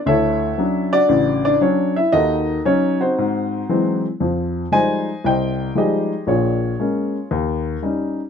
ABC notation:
X:1
M:4/4
L:1/8
Q:"Swing" 1/4=116
K:G#phr
V:1 name="Grand piano"
[EAce]3 [=DF=d]2 [Dd] c [Ee] | [DFAd]2 [Cc] [^B,DF^B]4 z | [K:Fm] z2 [cea]2 [ceg]2 [GAe]2 | [FAd]4 z4 |]
V:2 name="Grand piano" clef=bass
=D,,2 [F,C=D] z [A,,,C,]2 [F,CD] z | [D,,D,]2 [F,D] z G,,2 [E,F,G,^B,] z | [K:Fm] [F,,F,]2 [F,G,A,E] z C,,2 [F,G,A,E] z | [B,,,B,,]2 [A,B,D] z E,,2 [G,DE] z |]